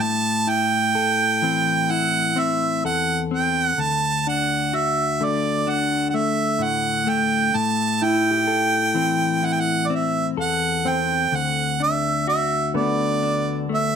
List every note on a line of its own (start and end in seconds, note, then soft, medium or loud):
0.00 2.83 A2 medium
0.00 0.51 A5 loud
0.47 1.89 E4 medium
0.47 1.92 G5 loud
0.95 2.84 A4 medium
1.42 3.73 E3 medium
1.42 2.35 C4 medium
1.91 3.73 E4 medium
1.91 2.41 F#5 loud
2.36 3.30 C4 medium
2.36 2.85 E5 medium
2.84 3.73 E2 medium
2.84 4.73 A4 medium
2.84 3.20 F#5 medium
3.31 3.72 C4 medium
3.31 3.65 G5 medium
3.65 3.82 F#5 medium
3.78 7.55 D2 medium
3.78 4.26 A5 loud
4.27 5.66 D4 medium
4.27 4.77 F#5 medium
4.73 6.61 F#4 medium
4.73 5.26 E5 medium
5.20 7.55 D3 medium
5.20 6.14 A3 medium
5.25 5.71 D5 medium
5.67 7.49 D4 medium
5.67 6.08 F#5 medium
6.10 6.17 F#5 medium
6.14 7.07 A3 medium
6.14 6.65 E5 medium
6.59 7.53 A2 medium
6.63 7.11 F#5 medium
7.07 8.95 A3 medium
7.07 7.59 G5 medium
7.54 10.38 A2 medium
7.54 8.05 A5 loud
8.02 9.42 E4 medium
8.02 11.31 E4 medium
8.02 9.47 G5 loud
8.31 11.58 G4 soft
8.47 10.37 A4 medium
8.94 11.26 E3 medium
8.94 9.89 C4 medium
9.43 11.26 E4 medium
9.43 9.54 F#5 medium
9.53 9.62 G5 medium
9.60 9.88 F#5 medium
9.87 10.84 C4 medium
9.87 9.97 D5 medium
9.95 10.28 E5 medium
10.37 11.26 E2 medium
10.37 12.27 A4 medium
10.41 10.90 F#5 medium
10.85 12.80 C4 medium
10.85 11.27 C4 medium
10.85 11.37 G5 medium
11.32 13.96 D2 medium
11.32 11.81 F#5 medium
11.80 13.22 D4 medium
11.80 12.25 E5 medium
12.28 13.96 F#4 medium
12.28 12.72 E5 medium
12.74 13.96 D3 medium
12.74 13.68 A3 medium
12.74 13.96 B3 medium
12.74 13.66 D5 medium
13.23 13.96 D4 medium
13.69 13.96 A3 medium
13.74 13.96 E5 medium